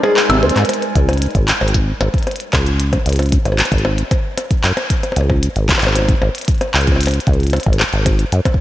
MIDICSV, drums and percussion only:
0, 0, Header, 1, 3, 480
1, 0, Start_track
1, 0, Tempo, 526316
1, 630, Time_signature, 4, 2, 24, 8
1, 7850, End_track
2, 0, Start_track
2, 0, Title_t, "Percussion blips"
2, 31, Note_on_c, 9, 60, 84
2, 123, Note_off_c, 9, 60, 0
2, 271, Note_on_c, 9, 60, 84
2, 362, Note_off_c, 9, 60, 0
2, 630, Note_on_c, 9, 60, 52
2, 722, Note_off_c, 9, 60, 0
2, 992, Note_on_c, 9, 60, 79
2, 1083, Note_off_c, 9, 60, 0
2, 1470, Note_on_c, 9, 60, 51
2, 1561, Note_off_c, 9, 60, 0
2, 1830, Note_on_c, 9, 60, 78
2, 1921, Note_off_c, 9, 60, 0
2, 2070, Note_on_c, 9, 60, 51
2, 2161, Note_off_c, 9, 60, 0
2, 2310, Note_on_c, 9, 60, 52
2, 2401, Note_off_c, 9, 60, 0
2, 2670, Note_on_c, 9, 60, 73
2, 2761, Note_off_c, 9, 60, 0
2, 2911, Note_on_c, 9, 60, 50
2, 3002, Note_off_c, 9, 60, 0
2, 3151, Note_on_c, 9, 60, 49
2, 3211, Note_off_c, 9, 60, 0
2, 3211, Note_on_c, 9, 60, 42
2, 3271, Note_off_c, 9, 60, 0
2, 3271, Note_on_c, 9, 60, 31
2, 3331, Note_off_c, 9, 60, 0
2, 3331, Note_on_c, 9, 60, 28
2, 3422, Note_off_c, 9, 60, 0
2, 3510, Note_on_c, 9, 60, 79
2, 3601, Note_off_c, 9, 60, 0
2, 3750, Note_on_c, 9, 60, 52
2, 3841, Note_off_c, 9, 60, 0
2, 3990, Note_on_c, 9, 60, 49
2, 4082, Note_off_c, 9, 60, 0
2, 4350, Note_on_c, 9, 60, 79
2, 4441, Note_off_c, 9, 60, 0
2, 4591, Note_on_c, 9, 60, 45
2, 4670, Note_off_c, 9, 60, 0
2, 4670, Note_on_c, 9, 60, 37
2, 4750, Note_off_c, 9, 60, 0
2, 4750, Note_on_c, 9, 60, 32
2, 4830, Note_off_c, 9, 60, 0
2, 4830, Note_on_c, 9, 60, 49
2, 4921, Note_off_c, 9, 60, 0
2, 5191, Note_on_c, 9, 60, 33
2, 5271, Note_off_c, 9, 60, 0
2, 5271, Note_on_c, 9, 60, 45
2, 5350, Note_off_c, 9, 60, 0
2, 5350, Note_on_c, 9, 60, 55
2, 5431, Note_off_c, 9, 60, 0
2, 5431, Note_on_c, 9, 60, 46
2, 5461, Note_off_c, 9, 60, 0
2, 5461, Note_on_c, 9, 60, 40
2, 5490, Note_off_c, 9, 60, 0
2, 5490, Note_on_c, 9, 60, 32
2, 5520, Note_off_c, 9, 60, 0
2, 5520, Note_on_c, 9, 60, 27
2, 5550, Note_off_c, 9, 60, 0
2, 5550, Note_on_c, 9, 60, 20
2, 5580, Note_off_c, 9, 60, 0
2, 5580, Note_on_c, 9, 60, 17
2, 5609, Note_off_c, 9, 60, 0
2, 5609, Note_on_c, 9, 60, 14
2, 5640, Note_off_c, 9, 60, 0
2, 5640, Note_on_c, 9, 60, 11
2, 5670, Note_off_c, 9, 60, 0
2, 5670, Note_on_c, 9, 60, 48
2, 5761, Note_off_c, 9, 60, 0
2, 6029, Note_on_c, 9, 60, 70
2, 6120, Note_off_c, 9, 60, 0
2, 6269, Note_on_c, 9, 60, 23
2, 6309, Note_off_c, 9, 60, 0
2, 6309, Note_on_c, 9, 60, 31
2, 6349, Note_off_c, 9, 60, 0
2, 6349, Note_on_c, 9, 60, 39
2, 6440, Note_off_c, 9, 60, 0
2, 6448, Note_on_c, 9, 60, 51
2, 6539, Note_off_c, 9, 60, 0
2, 6869, Note_on_c, 9, 60, 73
2, 6960, Note_off_c, 9, 60, 0
2, 7111, Note_on_c, 9, 60, 47
2, 7202, Note_off_c, 9, 60, 0
2, 7350, Note_on_c, 9, 60, 49
2, 7441, Note_off_c, 9, 60, 0
2, 7710, Note_on_c, 9, 60, 70
2, 7802, Note_off_c, 9, 60, 0
2, 7850, End_track
3, 0, Start_track
3, 0, Title_t, "Drums"
3, 151, Note_on_c, 9, 39, 111
3, 242, Note_off_c, 9, 39, 0
3, 271, Note_on_c, 9, 42, 51
3, 362, Note_off_c, 9, 42, 0
3, 391, Note_on_c, 9, 42, 54
3, 451, Note_off_c, 9, 42, 0
3, 451, Note_on_c, 9, 42, 66
3, 511, Note_off_c, 9, 42, 0
3, 511, Note_on_c, 9, 39, 59
3, 511, Note_on_c, 9, 42, 34
3, 591, Note_off_c, 9, 42, 0
3, 591, Note_on_c, 9, 42, 48
3, 602, Note_off_c, 9, 39, 0
3, 630, Note_off_c, 9, 42, 0
3, 630, Note_on_c, 9, 42, 94
3, 670, Note_off_c, 9, 42, 0
3, 670, Note_on_c, 9, 42, 56
3, 751, Note_off_c, 9, 42, 0
3, 751, Note_on_c, 9, 42, 38
3, 842, Note_off_c, 9, 42, 0
3, 871, Note_on_c, 9, 36, 112
3, 871, Note_on_c, 9, 42, 65
3, 962, Note_off_c, 9, 36, 0
3, 962, Note_off_c, 9, 42, 0
3, 992, Note_on_c, 9, 42, 37
3, 1032, Note_off_c, 9, 42, 0
3, 1032, Note_on_c, 9, 42, 30
3, 1071, Note_off_c, 9, 42, 0
3, 1071, Note_on_c, 9, 42, 24
3, 1111, Note_off_c, 9, 42, 0
3, 1111, Note_on_c, 9, 42, 90
3, 1191, Note_off_c, 9, 42, 0
3, 1191, Note_on_c, 9, 42, 14
3, 1231, Note_off_c, 9, 42, 0
3, 1231, Note_on_c, 9, 36, 103
3, 1231, Note_on_c, 9, 42, 41
3, 1322, Note_off_c, 9, 36, 0
3, 1322, Note_off_c, 9, 42, 0
3, 1351, Note_on_c, 9, 39, 114
3, 1351, Note_on_c, 9, 42, 63
3, 1442, Note_off_c, 9, 39, 0
3, 1442, Note_off_c, 9, 42, 0
3, 1530, Note_on_c, 9, 42, 38
3, 1591, Note_off_c, 9, 42, 0
3, 1591, Note_on_c, 9, 36, 110
3, 1591, Note_on_c, 9, 42, 96
3, 1682, Note_off_c, 9, 36, 0
3, 1682, Note_off_c, 9, 42, 0
3, 1830, Note_on_c, 9, 42, 64
3, 1921, Note_off_c, 9, 42, 0
3, 1950, Note_on_c, 9, 36, 95
3, 1950, Note_on_c, 9, 42, 17
3, 1990, Note_off_c, 9, 42, 0
3, 1990, Note_on_c, 9, 42, 22
3, 2030, Note_off_c, 9, 42, 0
3, 2030, Note_on_c, 9, 42, 23
3, 2042, Note_off_c, 9, 36, 0
3, 2070, Note_off_c, 9, 42, 0
3, 2070, Note_on_c, 9, 42, 26
3, 2110, Note_off_c, 9, 42, 0
3, 2110, Note_on_c, 9, 42, 30
3, 2150, Note_off_c, 9, 42, 0
3, 2150, Note_on_c, 9, 42, 34
3, 2189, Note_off_c, 9, 42, 0
3, 2189, Note_on_c, 9, 42, 36
3, 2281, Note_off_c, 9, 42, 0
3, 2310, Note_on_c, 9, 36, 115
3, 2310, Note_on_c, 9, 39, 113
3, 2310, Note_on_c, 9, 42, 39
3, 2401, Note_off_c, 9, 39, 0
3, 2401, Note_off_c, 9, 42, 0
3, 2402, Note_off_c, 9, 36, 0
3, 2429, Note_on_c, 9, 42, 37
3, 2521, Note_off_c, 9, 42, 0
3, 2550, Note_on_c, 9, 42, 90
3, 2641, Note_off_c, 9, 42, 0
3, 2670, Note_on_c, 9, 36, 104
3, 2670, Note_on_c, 9, 42, 40
3, 2761, Note_off_c, 9, 42, 0
3, 2762, Note_off_c, 9, 36, 0
3, 2790, Note_on_c, 9, 42, 62
3, 2819, Note_off_c, 9, 42, 0
3, 2819, Note_on_c, 9, 42, 49
3, 2850, Note_off_c, 9, 42, 0
3, 2850, Note_on_c, 9, 42, 42
3, 2881, Note_off_c, 9, 42, 0
3, 2881, Note_on_c, 9, 42, 33
3, 2911, Note_off_c, 9, 42, 0
3, 2911, Note_on_c, 9, 42, 39
3, 2941, Note_off_c, 9, 42, 0
3, 2941, Note_on_c, 9, 42, 23
3, 2971, Note_off_c, 9, 42, 0
3, 2971, Note_on_c, 9, 42, 19
3, 3001, Note_off_c, 9, 42, 0
3, 3001, Note_on_c, 9, 42, 15
3, 3030, Note_off_c, 9, 42, 0
3, 3030, Note_on_c, 9, 36, 113
3, 3030, Note_on_c, 9, 42, 92
3, 3121, Note_off_c, 9, 36, 0
3, 3122, Note_off_c, 9, 42, 0
3, 3151, Note_on_c, 9, 42, 40
3, 3242, Note_off_c, 9, 42, 0
3, 3271, Note_on_c, 9, 39, 119
3, 3271, Note_on_c, 9, 42, 65
3, 3331, Note_off_c, 9, 42, 0
3, 3331, Note_on_c, 9, 42, 52
3, 3362, Note_off_c, 9, 39, 0
3, 3390, Note_on_c, 9, 36, 101
3, 3391, Note_off_c, 9, 42, 0
3, 3391, Note_on_c, 9, 42, 42
3, 3450, Note_off_c, 9, 42, 0
3, 3450, Note_on_c, 9, 42, 32
3, 3481, Note_off_c, 9, 36, 0
3, 3541, Note_off_c, 9, 42, 0
3, 3631, Note_on_c, 9, 42, 39
3, 3722, Note_off_c, 9, 42, 0
3, 3750, Note_on_c, 9, 36, 118
3, 3750, Note_on_c, 9, 42, 66
3, 3841, Note_off_c, 9, 36, 0
3, 3841, Note_off_c, 9, 42, 0
3, 3990, Note_on_c, 9, 42, 89
3, 4082, Note_off_c, 9, 42, 0
3, 4110, Note_on_c, 9, 36, 102
3, 4110, Note_on_c, 9, 42, 39
3, 4201, Note_off_c, 9, 36, 0
3, 4202, Note_off_c, 9, 42, 0
3, 4230, Note_on_c, 9, 39, 116
3, 4230, Note_on_c, 9, 42, 40
3, 4322, Note_off_c, 9, 39, 0
3, 4322, Note_off_c, 9, 42, 0
3, 4350, Note_on_c, 9, 42, 37
3, 4441, Note_off_c, 9, 42, 0
3, 4470, Note_on_c, 9, 36, 116
3, 4470, Note_on_c, 9, 42, 91
3, 4561, Note_off_c, 9, 36, 0
3, 4561, Note_off_c, 9, 42, 0
3, 4591, Note_on_c, 9, 42, 38
3, 4682, Note_off_c, 9, 42, 0
3, 4710, Note_on_c, 9, 42, 64
3, 4801, Note_off_c, 9, 42, 0
3, 4830, Note_on_c, 9, 36, 105
3, 4921, Note_off_c, 9, 36, 0
3, 4951, Note_on_c, 9, 42, 92
3, 5042, Note_off_c, 9, 42, 0
3, 5070, Note_on_c, 9, 42, 39
3, 5161, Note_off_c, 9, 42, 0
3, 5190, Note_on_c, 9, 36, 117
3, 5191, Note_on_c, 9, 39, 117
3, 5191, Note_on_c, 9, 42, 62
3, 5230, Note_off_c, 9, 39, 0
3, 5230, Note_on_c, 9, 39, 94
3, 5271, Note_off_c, 9, 39, 0
3, 5271, Note_on_c, 9, 39, 78
3, 5281, Note_off_c, 9, 36, 0
3, 5282, Note_off_c, 9, 42, 0
3, 5310, Note_off_c, 9, 39, 0
3, 5310, Note_on_c, 9, 39, 61
3, 5310, Note_on_c, 9, 42, 39
3, 5350, Note_off_c, 9, 39, 0
3, 5350, Note_on_c, 9, 39, 52
3, 5390, Note_off_c, 9, 39, 0
3, 5390, Note_on_c, 9, 39, 41
3, 5402, Note_off_c, 9, 42, 0
3, 5431, Note_on_c, 9, 42, 94
3, 5481, Note_off_c, 9, 39, 0
3, 5522, Note_off_c, 9, 42, 0
3, 5550, Note_on_c, 9, 36, 104
3, 5550, Note_on_c, 9, 42, 39
3, 5641, Note_off_c, 9, 36, 0
3, 5641, Note_off_c, 9, 42, 0
3, 5790, Note_on_c, 9, 42, 36
3, 5820, Note_off_c, 9, 42, 0
3, 5820, Note_on_c, 9, 42, 30
3, 5850, Note_off_c, 9, 42, 0
3, 5850, Note_on_c, 9, 42, 26
3, 5880, Note_off_c, 9, 42, 0
3, 5880, Note_on_c, 9, 42, 21
3, 5909, Note_off_c, 9, 42, 0
3, 5909, Note_on_c, 9, 42, 85
3, 5910, Note_on_c, 9, 36, 122
3, 5939, Note_off_c, 9, 42, 0
3, 5939, Note_on_c, 9, 42, 13
3, 5969, Note_off_c, 9, 42, 0
3, 5969, Note_on_c, 9, 42, 11
3, 5999, Note_off_c, 9, 42, 0
3, 5999, Note_on_c, 9, 42, 9
3, 6001, Note_off_c, 9, 36, 0
3, 6029, Note_off_c, 9, 42, 0
3, 6029, Note_on_c, 9, 42, 38
3, 6120, Note_off_c, 9, 42, 0
3, 6149, Note_on_c, 9, 39, 116
3, 6209, Note_on_c, 9, 42, 39
3, 6240, Note_off_c, 9, 39, 0
3, 6269, Note_off_c, 9, 42, 0
3, 6269, Note_on_c, 9, 42, 37
3, 6270, Note_on_c, 9, 36, 103
3, 6360, Note_off_c, 9, 42, 0
3, 6361, Note_off_c, 9, 36, 0
3, 6389, Note_on_c, 9, 42, 83
3, 6412, Note_off_c, 9, 42, 0
3, 6412, Note_on_c, 9, 42, 70
3, 6436, Note_off_c, 9, 42, 0
3, 6436, Note_on_c, 9, 42, 57
3, 6460, Note_off_c, 9, 42, 0
3, 6460, Note_on_c, 9, 42, 48
3, 6484, Note_off_c, 9, 42, 0
3, 6484, Note_on_c, 9, 42, 37
3, 6509, Note_off_c, 9, 42, 0
3, 6509, Note_on_c, 9, 42, 34
3, 6568, Note_off_c, 9, 42, 0
3, 6568, Note_on_c, 9, 42, 29
3, 6629, Note_off_c, 9, 42, 0
3, 6629, Note_on_c, 9, 42, 62
3, 6630, Note_on_c, 9, 36, 116
3, 6689, Note_off_c, 9, 42, 0
3, 6689, Note_on_c, 9, 42, 19
3, 6721, Note_off_c, 9, 36, 0
3, 6750, Note_off_c, 9, 42, 0
3, 6750, Note_on_c, 9, 42, 17
3, 6779, Note_off_c, 9, 42, 0
3, 6779, Note_on_c, 9, 42, 18
3, 6809, Note_off_c, 9, 42, 0
3, 6809, Note_on_c, 9, 42, 22
3, 6839, Note_off_c, 9, 42, 0
3, 6839, Note_on_c, 9, 42, 23
3, 6869, Note_off_c, 9, 42, 0
3, 6869, Note_on_c, 9, 42, 26
3, 6900, Note_off_c, 9, 42, 0
3, 6900, Note_on_c, 9, 42, 30
3, 6930, Note_off_c, 9, 42, 0
3, 6930, Note_on_c, 9, 42, 31
3, 6960, Note_off_c, 9, 42, 0
3, 6960, Note_on_c, 9, 42, 33
3, 6990, Note_on_c, 9, 36, 105
3, 7049, Note_off_c, 9, 42, 0
3, 7049, Note_on_c, 9, 42, 39
3, 7081, Note_off_c, 9, 36, 0
3, 7111, Note_off_c, 9, 42, 0
3, 7111, Note_on_c, 9, 39, 116
3, 7111, Note_on_c, 9, 42, 61
3, 7202, Note_off_c, 9, 39, 0
3, 7202, Note_off_c, 9, 42, 0
3, 7230, Note_on_c, 9, 42, 37
3, 7321, Note_off_c, 9, 42, 0
3, 7350, Note_on_c, 9, 36, 118
3, 7350, Note_on_c, 9, 42, 90
3, 7441, Note_off_c, 9, 36, 0
3, 7441, Note_off_c, 9, 42, 0
3, 7470, Note_on_c, 9, 42, 37
3, 7561, Note_off_c, 9, 42, 0
3, 7591, Note_on_c, 9, 42, 63
3, 7682, Note_off_c, 9, 42, 0
3, 7710, Note_on_c, 9, 36, 96
3, 7710, Note_on_c, 9, 42, 39
3, 7790, Note_off_c, 9, 36, 0
3, 7790, Note_on_c, 9, 36, 78
3, 7802, Note_off_c, 9, 42, 0
3, 7850, Note_off_c, 9, 36, 0
3, 7850, End_track
0, 0, End_of_file